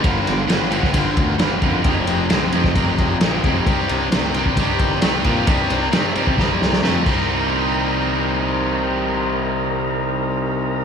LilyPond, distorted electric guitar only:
\new Staff \with { instrumentName = "Distorted electric guitar" } { \clef bass \time 4/4 \key c \minor \tempo 4 = 133 <g, d>4 <g, e>8 <g, d>8 <g, d>4 <g, e>8 <g, d>8 | <f, c>4 <f, d>8 <f, c>8 <f, c>4 <f, d>8 <f, c>8 | <c g>4 <c a>8 <c g>8 <c g>4 <c a>8 <c g>8 | <c g>4 <c a>8 <c g>8 <c g>4 <c a>8 <c g c' ees'>8~ |
<c g c' ees'>1~ | <c g c' ees'>1 | }